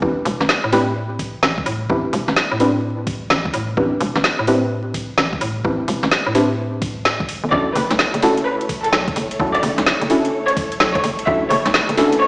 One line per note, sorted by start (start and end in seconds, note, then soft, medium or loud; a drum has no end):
0.02 0.14 A1 medium
0.02 0.19 C4 medium
0.02 0.19 D4 medium
0.02 0.19 E4 medium
0.02 0.19 G4 medium
0.02 0.19 B4 medium
0.02 kick loud
0.25 0.38 E1 loud
0.25 open hi-hat medium
0.41 0.47 A1 loud
0.41 snare soft
0.49 snare loud
0.64 1.30 A2 medium
0.72 0.83 C4 loud
0.72 0.83 D4 medium
0.72 0.83 E4 medium
0.72 0.83 G4 medium
0.72 0.83 B4 loud
0.72 snare medium
0.72 open hi-hat medium
1.19 kick medium
1.19 open hi-hat medium
1.43 1.63 A1 medium
1.43 snare loud
1.58 kick loud
1.66 1.86 A2 medium
1.66 open hi-hat medium
1.90 2.02 A1 loud
1.90 2.58 C4 medium
1.90 2.58 D4 medium
1.90 2.58 E4 medium
1.90 2.58 G4 medium
1.90 2.58 B4 medium
1.90 kick loud
2.13 2.25 E1 loud
2.13 open hi-hat loud
2.28 2.35 A1 loud
2.28 snare soft
2.36 snare loud
2.51 3.17 A2 medium
2.60 2.71 C4 loud
2.60 2.71 D4 medium
2.60 2.71 E4 medium
2.60 2.71 G4 medium
2.60 2.71 B4 loud
2.60 open hi-hat loud
3.07 kick medium
3.07 open hi-hat loud
3.30 3.50 A1 medium
3.30 snare loud
3.45 kick medium
3.54 3.74 A2 medium
3.54 open hi-hat loud
3.77 3.89 A1 loud
3.77 3.94 C4 medium
3.77 3.94 D4 medium
3.77 3.94 E4 medium
3.77 3.94 G4 medium
3.77 3.94 B4 medium
3.77 kick loud
4.01 4.13 E1 loud
4.01 open hi-hat loud
4.16 4.22 A1 loud
4.16 snare soft
4.24 snare loud
4.39 5.05 A2 medium
4.47 4.58 C4 loud
4.47 4.58 D4 medium
4.47 4.58 E4 medium
4.47 4.58 G4 medium
4.47 4.58 B4 loud
4.47 open hi-hat loud
4.94 kick medium
4.94 open hi-hat loud
5.18 5.38 A1 medium
5.18 snare loud
5.33 kick medium
5.41 5.61 A2 medium
5.41 open hi-hat loud
5.65 5.77 A1 loud
5.65 6.33 C4 medium
5.65 6.33 D4 medium
5.65 6.33 E4 medium
5.65 6.33 G4 medium
5.65 6.33 B4 medium
5.65 kick loud
5.88 6.00 E1 loud
5.88 open hi-hat loud
6.03 6.10 A1 medium
6.03 snare medium
6.11 snare loud
6.26 7.22 A2 medium
6.35 6.46 C4 medium
6.35 6.46 D4 medium
6.35 6.46 E4 medium
6.35 6.46 G4 medium
6.35 6.46 B4 loud
6.35 snare medium
6.35 open hi-hat loud
6.82 kick loud
6.82 open hi-hat loud
7.05 snare loud
7.20 7.30 D2 medium
7.20 kick medium
7.29 7.41 E1 medium
7.29 open hi-hat loud
7.44 7.50 G1 medium
7.52 7.64 B1 medium
7.52 12.28 A3 medium
7.52 7.69 C#4 medium
7.52 7.69 D4 medium
7.52 12.28 E4 medium
7.52 7.69 E4 medium
7.52 7.69 F#4 medium
7.52 12.28 A4 medium
7.52 7.69 A4 medium
7.52 11.23 C#5 medium
7.52 7.70 D5 loud
7.52 kick loud
7.75 7.88 F#1 loud
7.75 7.99 B4 medium
7.75 open hi-hat loud
7.90 7.97 B1 medium
7.90 snare medium
7.90 closed hi-hat medium
7.99 snare loud
8.14 8.80 F#1 medium
8.14 closed hi-hat soft
8.22 8.33 C#4 loud
8.22 8.33 D4 medium
8.22 8.33 E4 medium
8.22 8.33 F#4 medium
8.22 8.33 A4 loud
8.22 snare medium
8.22 open hi-hat loud
8.37 closed hi-hat medium
8.46 8.69 B4 medium
8.61 closed hi-hat soft
8.69 kick medium
8.69 open hi-hat loud
8.84 9.08 A4 medium
8.84 closed hi-hat medium
8.93 9.13 B1 medium
8.93 snare loud
9.08 kick loud
9.08 closed hi-hat soft
9.16 9.36 F#1 medium
9.16 open hi-hat loud
9.31 closed hi-hat medium
9.39 9.52 B1 loud
9.39 10.08 C#4 medium
9.39 10.08 D4 medium
9.39 10.08 E4 medium
9.39 10.08 F#4 medium
9.39 10.08 A4 medium
9.39 kick loud
9.55 9.78 D5 medium
9.55 closed hi-hat soft
9.63 9.75 F#1 loud
9.63 open hi-hat loud
9.78 9.85 B1 loud
9.78 snare medium
9.78 closed hi-hat medium
9.86 snare loud
10.01 10.67 F#1 medium
10.01 closed hi-hat soft
10.10 10.21 C#4 medium
10.10 10.21 D4 medium
10.10 10.21 E4 medium
10.10 10.21 F#4 medium
10.10 10.21 A4 loud
10.10 open hi-hat loud
10.25 closed hi-hat medium
10.48 10.78 C#5 medium
10.48 closed hi-hat soft
10.57 kick loud
10.57 open hi-hat loud
10.72 closed hi-hat medium
10.80 11.00 B1 medium
10.80 snare loud
10.95 11.19 C#5 medium
10.95 kick loud
10.95 closed hi-hat soft
11.04 11.24 F#1 medium
11.04 open hi-hat loud
11.19 closed hi-hat medium
11.27 11.39 B1 medium
11.27 11.44 C#4 medium
11.27 11.44 D4 medium
11.27 11.44 E4 medium
11.27 11.44 F#4 medium
11.27 11.44 A4 medium
11.27 12.28 B4 medium
11.27 11.45 E5 medium
11.27 kick loud
11.50 11.63 F#1 loud
11.50 11.74 C#5 medium
11.50 open hi-hat loud
11.66 11.72 B1 loud
11.66 snare medium
11.66 closed hi-hat medium
11.74 snare loud
11.89 12.28 F#1 medium
11.89 closed hi-hat soft
11.97 12.08 C#4 loud
11.97 12.08 D4 loud
11.97 12.08 E4 medium
11.97 12.08 F#4 medium
11.97 12.08 A4 loud
11.97 snare medium
11.97 open hi-hat loud
12.12 closed hi-hat medium
12.21 12.28 C#5 medium